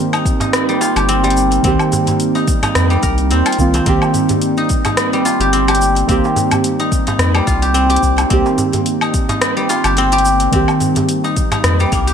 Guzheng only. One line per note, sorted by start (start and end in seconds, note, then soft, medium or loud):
0.00 0.68 G3 medium
0.00 1.08 C4 loud
0.00 0.13 D#4 medium
0.00 0.80 F4 medium
0.00 0.96 G4 medium
0.13 0.40 D#4 medium
0.41 2.35 D#4 medium
0.69 1.23 G3 medium
0.81 3.33 F4 medium
0.96 3.31 G4 medium
1.09 1.64 C4 loud
1.24 2.89 G3 medium
1.64 3.31 C4 medium
2.35 2.62 D#4 medium
2.63 4.57 D#4 medium
2.90 5.12 G3 medium
3.03 5.15 A#4 medium
3.31 3.73 C4 medium
3.46 5.25 F4 medium
3.74 3.86 C4 medium
3.86 5.52 C4 medium
4.58 4.85 D#4 medium
4.86 6.79 D#4 medium
5.13 7.33 G3 medium
5.25 7.47 F4 medium
5.41 5.68 G4 medium
5.53 6.08 C4 loud
5.68 7.62 G4 loud
6.09 7.74 C4 loud
6.80 7.07 D#4 medium
7.07 9.02 D#4 medium
7.34 9.55 G3 medium
7.47 9.69 F4 medium
7.62 7.89 G4 medium
7.74 8.30 C4 loud
7.90 9.84 G4 loud
8.30 9.98 C4 medium
9.02 9.29 D#4 medium
9.29 11.24 D#4 medium
9.57 11.79 G3 medium
9.69 12.14 F4 medium
9.85 10.12 G4 medium
9.98 10.52 C4 loud
10.13 12.07 G4 loud
10.53 12.14 C4 medium
11.24 11.51 D#4 medium
11.52 12.14 D#4 medium
11.80 12.14 G3 medium
11.92 12.14 A#3 medium
12.07 12.14 G4 medium